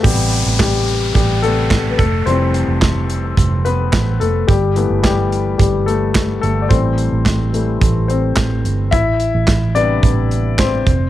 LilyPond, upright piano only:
<<
  \new Staff \with { instrumentName = "Upright piano" } { \time 4/4 \key a \minor \tempo 4 = 108 g'4 g'4 g'8 a'8.~ a'32 b'32 a'8 | c''2 r8 b'4 a'8 | g'4 g'4 g'8 a'4 a'16. d''32 | c''2 r8 c''4. |
e''4. d''4 r8 c''4 | }
  \new Staff \with { instrumentName = "Upright piano" } { \time 4/4 \key a \minor << { r4 g4 g8 a4 a8 | c'2 r8 b4 a8 | g4 g4 g8 a4 a8 | c'2 r8 c'4. |
e'4. d'4 r8 c'4 | } \\ { <c g b>8 r2 <c g b>8 r4 | <e g a>4. r2 r8 | r8 <e a b>4. r2 | <e g a>4. <e g a>8 r2 |
r4. <c g b>2 r8 | } >> }
>>